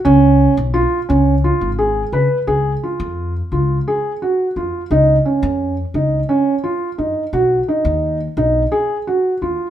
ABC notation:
X:1
M:7/8
L:1/16
Q:1/4=86
K:C#mix
V:1 name="Felt piano"
C4 E2 C2 E2 G2 B2 | G2 E4 E2 G2 F2 E2 | D2 C4 D2 C2 E2 D2 | F2 D4 D2 G2 F2 E2 |]
V:2 name="Upright bass" clef=bass
C,,3 B,,,2 z C,,3 G,,,3 C, z | C,,2 z E,,3 C,,2 z4 E,, z | C,,2 z E,,3 C,,2 z4 F,, z | B,,,2 z D,,3 B,,,2 z4 D,, z |]